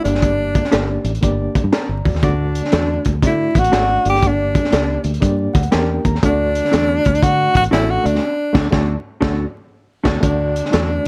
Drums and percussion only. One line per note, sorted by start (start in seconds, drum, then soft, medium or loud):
0.05 closed hi-hat medium
0.15 snare soft
0.22 kick medium
0.22 closed hi-hat medium
0.55 kick medium
0.55 closed hi-hat medium
0.65 snare soft
0.72 snare loud
0.72 closed hi-hat medium
1.05 closed hi-hat medium
1.15 closed hi-hat soft
1.23 kick medium
1.23 closed hi-hat medium
1.55 kick medium
1.55 closed hi-hat medium
1.73 snare medium
1.73 closed hi-hat medium
2.05 kick medium
2.05 open hi-hat soft
2.15 snare soft
2.23 kick loud
2.23 closed hi-hat medium
2.55 closed hi-hat medium
2.65 snare soft
2.72 snare loud
2.72 closed hi-hat medium
3.05 kick medium
3.05 closed hi-hat medium
3.22 kick medium
3.22 closed hi-hat medium
3.55 kick loud
3.55 closed hi-hat medium
3.64 closed hi-hat medium
3.73 snare medium
3.73 closed hi-hat medium
4.05 closed hi-hat medium
4.15 snare soft
4.22 kick medium
4.22 closed hi-hat medium
4.55 kick medium
4.55 closed hi-hat medium
4.65 snare soft
4.72 snare loud
4.72 closed hi-hat medium
5.04 closed hi-hat medium
5.14 closed hi-hat soft
5.22 kick medium
5.22 closed hi-hat medium
5.55 kick loud
5.55 closed hi-hat medium
5.63 closed hi-hat medium
5.72 snare loud
5.72 closed hi-hat medium
6.05 kick medium
6.05 closed hi-hat medium
6.15 snare soft
6.23 kick loud
6.23 closed hi-hat medium
6.55 closed hi-hat medium
6.65 snare soft
6.73 snare loud
6.73 closed hi-hat medium
7.05 kick medium
7.05 closed hi-hat medium
7.15 closed hi-hat soft
7.23 kick medium
7.23 closed hi-hat loud
7.55 kick medium
7.55 closed hi-hat medium
7.64 closed hi-hat medium
7.73 snare loud
7.73 closed hi-hat medium
8.06 closed hi-hat medium
8.15 snare soft
8.55 kick loud
8.55 snare loud
8.55 crash medium
8.73 kick loud
8.73 snare loud
9.22 kick loud
9.22 snare loud
10.05 kick medium
10.05 snare medium
10.05 crash medium
10.23 kick loud
10.23 closed hi-hat medium
10.56 closed hi-hat medium
10.65 snare soft
10.73 snare loud
10.73 closed hi-hat medium